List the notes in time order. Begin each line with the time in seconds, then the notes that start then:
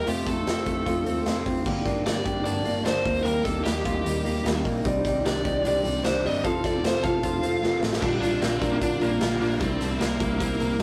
Already playing: D#4
0.05 F2 C3 F3 A3 C4 F4 G4, closed hi-hat
0.26 F2 F3 A3 C4 A4, kick, snare, closed hi-hat
0.45 F2 C3 F3 A3 C4, snare, closed hi-hat
0.65 F2 F3 A3 C4, kick, closed hi-hat
0.86 F2 C3 F3 A3 C4 F4, kick, closed hi-hat
1.06 D#2 F3 A3 C4, closed hi-hat
1.25 F2 C3 F3 A3 C4 F4, snare, closed hi-hat
1.45 F2 F3 A3 C4, kick, open hi-hat
1.65 G1 G2 D3 G3 A#3 D4 G4, kick, crash
1.86 G1 G3 A#3 D4, kick, snare, closed hi-hat
2.05 G1 D3 G3 A#3 C4 D4 D5, snare, closed hi-hat
2.16 D4
2.25 G1 G3 A#3 D4 G4, kick, closed hi-hat
2.44 G1 G2 D3 G3 A#3 D4 D5, closed hi-hat
2.64 G1 G3 A#3 D4, closed hi-hat
2.83 G1 D3 G3 A#3 D4 C5, snare, closed hi-hat
3.04 D#2 G3 A#3 D#4, kick, open hi-hat
3.23 D#3 G3 A#3 D#4 G4 A#4, closed hi-hat
3.44 D#2 G3 A#3 D#4 A4, kick, snare, closed hi-hat
3.64 D#2 D#3 G3 A#3 D#4 G4, snare, closed hi-hat
3.84 D#2 G3 A#3 D#4 F4, kick, closed hi-hat
3.95 G4
4.05 D#2 D#3 G3 A#3 D#4, closed hi-hat
4.25 D#2 G3 A#3 D#4, closed hi-hat
4.45 D#2 D#3 G3 A#3 D#4, snare, closed hi-hat
4.65 A#1 G3 A#3 D#4, kick, open hi-hat
4.85 C2 C3 D#3 G3 C4 D#4 G4 D5, kick, closed hi-hat
5.04 C2 G3 C4 D#4 G4 D5, kick, snare, closed hi-hat
5.24 C2 C4 D4 D#4 G4 D5, snare, closed hi-hat
5.44 C2 C4 D#4 G4 D5, kick, closed hi-hat
5.65 C2 C3 G3 C4 D4 D#4 G4 D5, closed hi-hat
5.84 C2 G3 C4 D#4 G4 D5, closed hi-hat
6.04 C2 C4 D4 D#4 G4 C5 D5, snare, closed hi-hat
6.24 G1 G3 D#4 G4 D5 D#5, open hi-hat
6.28 C4
6.45 F1 C3 F3 A3 C4 F4 A4 C5 F5, kick, closed hi-hat
6.64 F1 C4 F4 A4 C5 D5, kick, snare, closed hi-hat
6.83 F1 C4 F4 A4 C5, snare, closed hi-hat
7.03 F1 F4 A4 C5 F5, kick, closed hi-hat
7.23 F1 F3 C4 F4 A4 C5, kick, closed hi-hat
7.43 F1 C4 F4 A4 C5, closed hi-hat
7.62 F1 C4 F4 A4 C5, snare
7.81 A1 C4 F4 A4 C5, snare
7.93 snare
8.01 A#1 A#2 D3 G3 D4 F4 A#4 D5 G5, kick, crash
8.21 A#1 D4 F4, snare, closed hi-hat
8.25 G3
8.41 A#1 D3 G3 C4 D4 F4, snare, closed hi-hat
8.60 A#1 G3 D4 F4 A#4, kick, closed hi-hat
8.72 A#3
8.80 A#1 A#2 D3 G3 D4 F4, kick, closed hi-hat
8.99 A#1 G3 A#3 D4 F4 A#4, closed hi-hat
9.19 A#1 D3 G3 D4 F4, snare, closed hi-hat
9.40 A#1 G3 A#3 D4 F4, open hi-hat
9.59 C2 C3 G3 A#3 C4 E4 C5, kick, closed hi-hat
9.80 C2 G3 A#3 D4 E4, snare, closed hi-hat
9.91 E4
9.99 C2 C3 G3 A#3 C4 E4, snare, closed hi-hat
10.19 C2 G3 A#3 E4 A#4, kick, closed hi-hat
10.38 C2 C3 G3 A#3 C4 E4, kick, closed hi-hat
10.60 C2 G3 A#3 E4 A#4, closed hi-hat
10.79 C3 G3